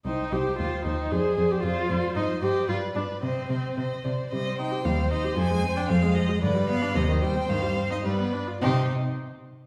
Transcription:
<<
  \new Staff \with { instrumentName = "Violin" } { \time 2/4 \key c \minor \tempo 4 = 113 g''8 g''8 g''8 g''8 | d''8 d''8 d''8 d''8 | ees''8 ees''8 d''8 d''8 | ees''8 ees''8 ees''8 d''8 |
ees''8 g''8 f''8 ees''8 | aes''8. g''16 f''8 ees''8 | d''8 f''8 ees''8 g''8 | f''8. ees''16 d''4 |
c''8 r4. | }
  \new Staff \with { instrumentName = "Violin" } { \time 2/4 \key c \minor c''8 c''8 c''8 c''8 | c''8 c''8 c''8 c''8 | c''8 c''8 b'8 b'8 | c''8 c''8 c''8 c''8 |
c''2~ | c''2 | b'4 c''4~ | c''4 b'8 r8 |
g'8 r4. | }
  \new Staff \with { instrumentName = "Viola" } { \time 2/4 \key c \minor ees'8 g'8 f'8 ees'8 | aes'8. g'16 f'4 | ees'8 g'8 f'8 d'8 | c'4 r4 |
g16 c'16 ees'16 g'16 g16 c'16 ees'16 g'16 | f16 aes16 c'16 d'16 c'16 aes16 f16 aes16 | d16 g16 b16 d'16 c16 ees16 g16 c'16 | ees16 g16 c'16 ees'16 g16 b16 d'16 f'16 |
ees'8 r4. | }
  \new Staff \with { instrumentName = "Cello" } { \clef bass \time 2/4 \key c \minor c,8 c,8 ees,8 ees,8 | f,8 f,8 f,8 f,8 | g,8 g,8 g,8 g,8 | c8 c8 c8 c8 |
c4 ees,4 | f,4 f,4 | g,4 ees,4 | g,4 g,4 |
c8 r4. | }
>>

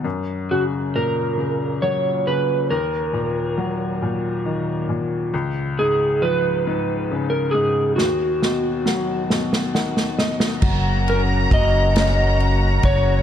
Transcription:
<<
  \new Staff \with { instrumentName = "Violin section" } { \time 6/8 \key fis \major \tempo 4. = 45 r2. | r2. | r2. | r2. |
ais''2. | }
  \new Staff \with { instrumentName = "Electric slide guitar" } { \time 6/8 \key fis \major r8 fis'8 ais'4 cis''8 b'8 | ais'2~ ais'8 r8 | r8 gis'8 b'4~ b'16 ais'16 gis'8 | fis'2~ fis'8 r8 |
r8 ais'8 dis''4 r8 cis''8 | }
  \new Staff \with { instrumentName = "Analog synth pad" } { \clef bass \time 6/8 \key fis \major r2. | r2. | r2. | r2. |
<cis fis ais fis'>2. | }
  \new Staff \with { instrumentName = "Upright piano" } { \clef bass \time 6/8 \key fis \major fis,8 cis8 ais,8 cis8 fis8 cis8 | dis,8 ais,8 fis8 ais,8 dis8 ais,8 | cis,8 gis,8 eis8 gis,8 cis8 gis,8 | dis,8 b,8 fis8 b,8 <dis fis''>8 <b, dis''>8 |
fis8 cis'8 fis'8 cis'4. | }
  \new Staff \with { instrumentName = "Upright bass" } { \clef bass \time 6/8 \key fis \major r2. | r2. | r2. | r2. |
fis,,4 fis,,4. fis,,8 | }
  \new DrumStaff \with { instrumentName = "Drums" } \drummode { \time 6/8 r4. r4. | r4. r4. | r4. r4. | sn8 sn8 sn8 sn16 sn16 sn16 sn16 sn16 sn16 |
<cymc bd>8 cymr8 <bd cymr>8 <cymr sn>8 cymr8 <bd cymr>8 | }
>>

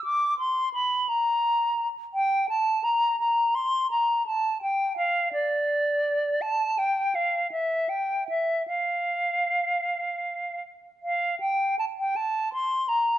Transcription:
\new Staff \with { instrumentName = "Flute" } { \time 6/8 \key bes \lydian \tempo 4. = 55 d'''8 c'''8 b''8 bes''4 r8 | \key f \major g''8 a''8 bes''8 bes''8 c'''8 bes''8 | a''8 g''8 f''8 d''4. | a''8 g''8 f''8 e''8 g''8 e''8 |
f''2~ f''8 r8 | \key g \dorian f''8 g''8 a''16 g''16 a''8 c'''8 bes''8 | }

